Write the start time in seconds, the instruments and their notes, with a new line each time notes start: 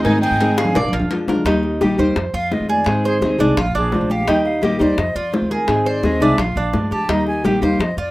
Already playing: cuban tres D#4
0.04 upright bass G#2, nylon-string guitar D#3 G#3 C4 D#4 G#4, violin section D#4, flute G#5, cowbell, high conga
0.18 violin section D#4, flute G5, high conga
0.23 cuban tres G#4
0.31 upright bass G#2
0.40 nylon-string guitar D#3 G#3 C4 D#4 G#4, cowbell, high conga
0.57 violin section D4, cuban tres G#4, flute F5, cowbell, high bongo
0.65 low conga
0.75 upright bass A#1, cuban tres D5, muted nylon-string guitar stroke, cowbell, low bongo, low conga
0.84 upright bass A#1
0.89 low conga
0.93 upright bass A#1, cuban tres F4, cowbell
1.00 upright bass F2, low conga
1.11 nylon-string guitar F3 G#3 D4 F4, cowbell, low bongo
1.28 upright bass D2, nylon-string guitar G#3 D4 F4, cuban tres A#4, low bongo
1.35 low conga
1.45 upright bass D#2, nylon-string guitar D#3 G3 A#3 D#4 G4, cuban tres D#4, high bongo, high conga
1.63 high bongo, high conga
1.81 upright bass A#1, nylon-string guitar D#3 G3 A#3 D#4 G4, cuban tres G4, high bongo, high conga
1.98 upright bass D#2, nylon-string guitar G3 A#3 D#4 G4, cuban tres C5, high bongo, high conga
2.16 upright bass F2, muted nylon-string guitar stroke, high bongo, high conga
2.34 upright bass F2, cuban tres F4, flute F5, high conga
2.51 nylon-string guitar D#3 G#3 C4 F4, flute D#5, high bongo, low bongo, high conga
2.60 upright bass F2
2.69 cuban tres G#4, flute D5, high bongo, high conga
2.86 upright bass G#2, nylon-string guitar D#3 G#3 C4 D#4 G#4, flute C5, high bongo, high conga
3.04 flute G#4, cuban tres C5, high bongo, high conga
3.21 upright bass D#2, nylon-string guitar D#3 G#3 C4 D#4 G#4, high bongo, high conga
3.38 upright bass C2, nylon-string guitar G#3 C4 D#4 G#4, cuban tres D4, high bongo
3.57 upright bass A#1, cuban tres F4, flute F5, muted nylon-string guitar stroke, high bongo, high conga, low conga
3.75 upright bass A#1, cuban tres D4, flute G#4, high conga
3.92 nylon-string guitar F3 G#3 D4 F4, flute C5, high bongo, low bongo, high conga
4.01 upright bass A#1
4.10 cuban tres G4, flute F5, high bongo, high conga
4.27 upright bass D#2, nylon-string guitar D#3 G3 A#3 D#4 G4, cuban tres D#4, flute G5, high bongo, high conga
4.45 flute F5, high bongo, high conga
4.62 upright bass A#1, nylon-string guitar D#3 G3 A#3 D#4 G4, cuban tres G4, flute D#5, high bongo, high conga
4.79 upright bass D#2, nylon-string guitar G3 A#3 D#4 G4, cuban tres C5, flute D5, high bongo, high conga
4.98 upright bass F2, flute D#5, muted nylon-string guitar stroke, high bongo, high conga
5.15 upright bass F2, cuban tres F4, flute D5, high conga
5.32 nylon-string guitar D#3 G#3 C4 F4, flute C5, high bongo, low bongo, high conga
5.42 upright bass D#2
5.51 cuban tres G#4, flute A#4, high bongo, high conga
5.67 upright bass G#2, nylon-string guitar D#3 G#3 C4 D#4 G#4, flute C5, high bongo, high conga
5.86 cuban tres C5, flute D5, high bongo, high conga
6.03 upright bass D#2, nylon-string guitar D#3 G#3 C4 D#4 G#4, flute D#5, high bongo, high conga
6.20 upright bass C2, nylon-string guitar G#3 C4 D#4 G#4, cuban tres D4, flute E5, high bongo
6.38 upright bass A#1, cuban tres F4, flute F5, muted nylon-string guitar stroke, high bongo, high conga, low conga
6.56 upright bass A#1, cuban tres D4, high conga, low conga
6.74 upright bass G2, nylon-string guitar F3 G#3 D4 F4, high bongo, low bongo, high conga
6.91 upright bass F2, cuban tres G4, flute A5, high bongo
7.08 upright bass D#2, nylon-string guitar D#3 G3 A#3 D#4 G4, cuban tres D#4, flute A#5, high bongo, high conga
7.27 flute G#5, high bongo, high conga
7.44 upright bass A#1, nylon-string guitar D#3 G3 A#3 D#4 G4, cuban tres G4, flute G5, high bongo, high conga
7.62 upright bass D#2, nylon-string guitar G3 A#3 D#4 G4, cuban tres C5, flute F5, high bongo
7.79 upright bass F2, flute D#5, muted nylon-string guitar stroke, high bongo, high conga
7.97 upright bass F2, cuban tres F4, flute D5, high conga